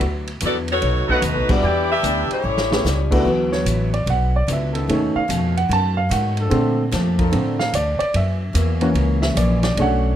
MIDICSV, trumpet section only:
0, 0, Header, 1, 2, 480
1, 0, Start_track
1, 0, Key_signature, 2, "major"
1, 0, Tempo, 406504
1, 20, Time_signature, 4, 2, 24, 8
1, 11996, End_track
2, 0, Start_track
2, 0, Title_t, "Trumpet section"
2, 0, Program_c, 0, 61
2, 1275, Note_on_c, 0, 63, 91
2, 1276, Note_on_c, 0, 69, 84
2, 1278, Note_on_c, 0, 78, 95
2, 1280, Note_on_c, 0, 71, 87
2, 1392, Note_off_c, 0, 63, 0
2, 1393, Note_off_c, 0, 69, 0
2, 1394, Note_off_c, 0, 78, 0
2, 1395, Note_off_c, 0, 71, 0
2, 1926, Note_on_c, 0, 64, 81
2, 1927, Note_on_c, 0, 79, 89
2, 1930, Note_on_c, 0, 71, 74
2, 1930, Note_on_c, 0, 74, 73
2, 2888, Note_off_c, 0, 64, 0
2, 2888, Note_off_c, 0, 79, 0
2, 2890, Note_off_c, 0, 71, 0
2, 2890, Note_off_c, 0, 74, 0
2, 11996, End_track
0, 0, End_of_file